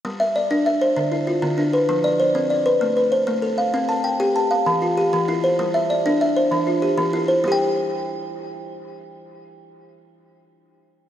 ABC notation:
X:1
M:12/8
L:1/8
Q:3/8=130
K:Gmix
V:1 name="Kalimba"
z e d2 e c2 E F2 D B- | B d c2 d B2 B c2 A f- | f a g2 a f2 F G2 E c- | c e d2 e c2 F G2 E c- |
c z8 z3 | z12 |]
V:2 name="Kalimba" clef=bass
G,2 z D2 z D,2 z D,2 z | F,2 z C2 z A,2 z A,2 z | C2 z G2 z E,2 z E,2 z | G,2 z D2 z E,2 z E,2 z |
[G,Gg]12- | [G,Gg]12 |]